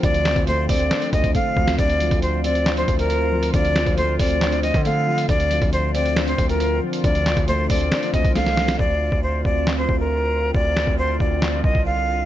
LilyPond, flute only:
\new Staff \with { instrumentName = "Flute" } { \time 4/4 \key d \minor \tempo 4 = 137 d''4 c''8 d''4 ees''8 f''4 | d''4 c''8 d''8. c''8 bes'4~ bes'16 | d''4 c''8 d''4 ees''8 f''4 | d''4 c''8 d''8. c''8 bes'4~ bes'16 |
d''4 c''8 d''4 ees''8 f''4 | d''4 c''8 d''8. c''8 bes'4~ bes'16 | d''4 c''8 d''4 ees''8 f''4 | }